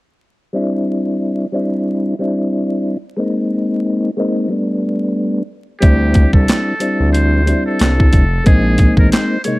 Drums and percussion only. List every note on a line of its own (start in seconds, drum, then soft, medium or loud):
5.82 kick loud
5.82 closed hi-hat medium
6.14 kick medium
6.14 closed hi-hat medium
6.33 kick medium
6.48 snare loud
6.48 clap loud
6.48 closed hi-hat loud
6.80 closed hi-hat medium
7.14 closed hi-hat medium
7.47 closed hi-hat medium
7.79 snare loud
7.79 clap medium
7.79 closed hi-hat medium
8.00 kick medium
8.13 kick medium
8.13 closed hi-hat medium
8.46 kick loud
8.46 closed hi-hat medium
8.78 kick medium
8.78 closed hi-hat medium
8.97 kick medium
9.12 snare loud
9.12 clap medium
9.12 closed hi-hat loud
9.44 closed hi-hat medium